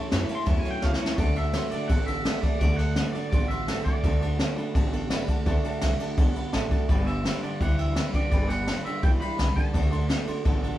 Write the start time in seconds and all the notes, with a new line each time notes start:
Already playing: A2 E3 E4 A4 A5
0.11 F#2 A2 E3 A3 C#4 E4 A4 C#5 E5 A5, snare, ride
0.29 A2 E3 A3 C#4 E4 A4 C#5 E5 A5, muted upright bass stroke, ride
0.35 C6
0.46 E2 A2 E3 F#3 A3 C#4 E4 A4 C#5 E5 F#5 A5, kick, ride
0.59 G#5
0.65 A2 F#3 A3 C#4 E4 A4 C#5 E5 F#5, muted upright bass stroke, ride
0.71 G5
0.82 C#2 A2 E3 A3 C#4 E4 A4 C#5 E5 F5 A5, snare
0.94 C#5, snare
1.00 A2 E3 A3 C#4 E4 A4 C#5 E5 A5
1.06 snare
1.18 D2 D3 A3 D4 F#4 A4 D5 F#5 A5, kick, ride
1.35 D3 A3 D4 F#4 A4 D5 E5 F#5 A5, ride
1.53 D3 A3 D4 F#4 A4 D5 F#5 C6, snare, ride
1.71 D3 A3 D4 F#4 A4 D5 F#5 A5, muted upright bass stroke, ride
1.88 A1 D3 A3 B3 D4 F#4 A4 D5 F#5 A5, kick, ride
2.06 D3 B3 D4 F#4 A4 D5 E5 F#5 A5, ride
2.25 D3 A3 D4 F#4 A4 D5 F#5 A5, snare, ride
2.41 D3 A3 D4 F#4 A4 D5 F#5 A5, kick, ride
2.59 D2 D3 A3 D4 F#4 A4 D5 F#5 A5, kick, ride
2.76 D3 A3 D4 F#4 A4 D5 F#5 A5, snare, ride
2.96 D3 A3 D4 F#4 A4 D5 F#5 A5, snare, ride
3.12 D3 A3 F#4 A4 D5 F#5 A5, muted upright bass stroke, ride
3.17 D4
3.30 A1 D3 A3 B3 D4 F#4 D5 F#5, kick, ride
3.34 A4 C6
3.48 D3 B3 F#4 A4 D5 E5 F#5, ride
3.52 D4 C6
3.68 D3 A3 D4 F#4 A4 D5 F#5 A5, snare, ride
3.84 D3 A3 D4 F#4 A4 D5 F#5 A5, kick, ride
4.04 D2 D3 A3 D4 F#4 A4 D5 F#5 A5, kick, ride
4.21 D3 A3 D4 F#4 A4 D5 F#5 A5, ride
4.39 D3 A3 D4 F#4 A4 D5 F#5 A5, snare, ride
4.56 D3 A3 D4 F#4 A4 D5 F#5 B5, muted upright bass stroke, ride
4.74 A1 D3 A3 B3 D4 F#4 A4 D5 F#5 A5, kick, ride
4.92 D3 B3 D4 F#4 A4 D5 F#5 A5, ride
5.10 D3 A3 D4 F#4 A4 D5 F#5 B5, snare, ride
5.28 D3 A3 D4 F#4 A4 D5 F#5 A5, muted upright bass stroke, kick, ride
5.46 D2 D3 A3 D4 F#4 A4 D5 F#5 A5, kick, ride
5.64 D3 A3 D4 F#4 A4 D5 F#5 A5, muted upright bass stroke, ride
5.81 C2 D3 A3 D4 F#4 A4 D5 F#5 A5, snare, ride
6.00 D3 A3 D4 F#4 A4 D5 F#5 A5, muted upright bass stroke, ride
6.17 B1 D3 A3 B3 D4 F#4 A4 D5 F#5 A5, kick, ride
6.35 D3 B3 D4 F#4 A4 D5 F#5 B5, muted upright bass stroke, ride
6.53 A1 D3 A3 D4 F#4 A4 D5 F#5 A5, snare, ride
6.71 D3 A3 D4 F#4 A4 D5 F#5 A5, muted upright bass stroke, kick, ride
6.88 G1 G2 D3 G3 D4 G4 B4 D5 G5 B5, kick, ride
7.06 G2 D3 D4 G4 B4 D5 E5 G5 B5, ride
7.24 G2 D3 G3 D4 G4 B4 D5 G5 B5, snare, ride
7.42 G2 D3 D4 G4 B4 D5 G5 A5, muted upright bass stroke, ride
7.59 D2 G2 E3 G3 D4 G4 B4 D5 F#5 G5 B5, kick, ride
7.77 G2 E3 D4 G4 B4 D5 E5 G5 B5, ride
7.95 G2 D3 G3 D4 G4 B4 D5 G5 B5, snare, ride
8.13 G2 D3 D4 G4 B4 D5 G5 D6, muted upright bass stroke, kick, ride
8.31 G1 G2 D3 G3 D4 G4 B4 D5 G5 B5, kick, ride
8.48 G2 D3 G4 B4 D5 F#5 G5 B5, snare, ride
8.66 G2 D3 G3 D4 G4 B4 D5 G5 B5, snare, ride
8.84 G2 D3 D4 G4 B4 D5 E5 G5 B5, muted upright bass stroke, ride
9.02 B1 G2 E3 G3 D4 G4 B4 D5 G5 B5, kick, ride
9.20 G2 E3 D4 G4 B4 D5 G5 B5, muted upright bass stroke, ride
9.37 C2 G2 D3 G3 D4 G4 B4 D5 G5 B5, snare, ride
9.55 G2 D3 D4 G4 B4 D5 G5 A5, muted upright bass stroke, kick, ride
9.73 D2 D3 A3 D4 F#4 A4 D5 F#5 A5, kick, ride
9.90 D3 A3 D4 F#4 A4 D5 F#5 C6, ride
10.08 D3 A3 D4 F#4 A4 D5 F#5 B5, snare, ride
10.27 D3 A3 D4 F#4 A4 D5 F#5 C6, muted upright bass stroke, ride
10.44 A1 D3 A3 B3 D4 F#4 A4 D5 F#5 A5, kick, ride
10.62 D3 B3 D4 F#4 A4 D5 F#5 A5, ride